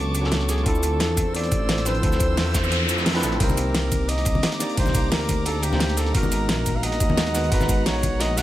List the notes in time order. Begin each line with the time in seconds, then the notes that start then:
Already playing: C#2 F#3 B3 C#4 D4 A4 B4 A5 C#6 D6
0.15 closed hi-hat, cabasa
0.21 F#3 B3 C#4, snare
0.25 D4 A4
0.31 snare, closed hi-hat
0.41 snare
0.49 G#4, snare, closed hi-hat, cabasa
0.58 snare
0.63 D2 C4 D4 F4 A4 C5 E6, kick, closed hi-hat
0.67 E4 A4
0.75 cabasa
0.83 closed hi-hat, cabasa
1.00 E2, snare, closed hi-hat
1.17 kick, closed hi-hat, cabasa
1.35 D5, closed hi-hat
1.36 closed hi-hat
1.43 snare, closed hi-hat
1.51 A1, kick, closed hi-hat, cabasa
1.69 snare, closed hi-hat
1.77 snare, closed hi-hat
1.85 F3 C4 D4 E4 B4 C5, snare, closed hi-hat, cabasa
1.94 closed hi-hat
2.01 D2 C4 D4 F4, kick, closed hi-hat, noise sweep
2.05 E4 A4
2.12 snare, cabasa
2.20 kick, closed hi-hat, cabasa
2.37 E2, snare, closed hi-hat, open hi-hat
2.54 kick, snare, closed hi-hat, cabasa
2.64 cabasa
2.72 closed hi-hat
2.89 F2, closed hi-hat, cabasa
2.98 snare, cabasa
3.06 snare, closed hi-hat
3.10 F3, snare, closed hi-hat
3.14 C4 D4 E4 B4, snare, closed hi-hat
3.19 F3 C4, snare, closed hi-hat
3.23 A1 D4 E4 A4, snare, closed hi-hat, cabasa
3.32 snare
3.38 C2 A#3 C4 D#4 A#4 A#5 D6, kick, closed hi-hat, ride
3.42 G4 C5
3.49 high conga, cabasa
3.57 closed hi-hat, ride, cabasa
3.74 snare, closed hi-hat, ride
3.92 kick, closed hi-hat, ride, high conga, cabasa
4.09 D#5, closed hi-hat, ride
4.18 snare, closed hi-hat
4.25 C2, kick, closed hi-hat, ride, cabasa
4.35 high conga
4.43 snare, closed hi-hat, ride
4.52 snare, closed hi-hat
4.59 A#3 D4 D#4 G4 D5, snare, closed hi-hat, ride, cabasa
4.69 closed hi-hat
4.75 C2 A#3 D4 D#4 C5, kick, closed hi-hat, ride
4.79 G4 C5
4.86 snare, high conga, cabasa
4.95 kick, closed hi-hat, ride, cabasa
5.12 D2 A#4, snare, closed hi-hat, open hi-hat, ride
5.29 kick, closed hi-hat, ride, high conga, cabasa
5.46 A4, closed hi-hat, ride
5.63 G4, closed hi-hat, ride, cabasa
5.70 A#3 D4 D#4, snare, high conga
5.74 G4 C5
5.80 snare, closed hi-hat, ride
5.89 snare
5.97 A4, snare, closed hi-hat, ride, cabasa
6.06 snare
6.12 G#1 G#3 B3 D#4 A#4 F#5, kick, closed hi-hat, ride
6.16 F#4 A#4
6.23 high conga, cabasa
6.32 closed hi-hat, ride, cabasa
6.49 A#1, snare, closed hi-hat, ride
6.66 kick, closed hi-hat, ride, high conga, cabasa
6.76 F5
6.83 D#5, closed hi-hat, ride
6.92 snare, closed hi-hat
7.00 D#2, kick, closed hi-hat, ride, cabasa
7.10 high conga
7.17 snare, closed hi-hat, ride
7.26 snare, closed hi-hat
7.33 G#3 B3 D#4 F#4 B4, snare, closed hi-hat, ride, cabasa
7.44 closed hi-hat
7.49 G#1 G#3 B3 D#4 B4, kick, closed hi-hat, ride
7.53 F#4 A#5
7.61 snare, high conga, cabasa
7.69 kick, closed hi-hat, ride, cabasa
7.86 A#1 C#5, snare, closed hi-hat, open hi-hat, ride
8.03 kick, closed hi-hat, ride, high conga, cabasa
8.20 D#5, snare, closed hi-hat, ride
8.37 B1 F#5, snare, closed hi-hat, ride, cabasa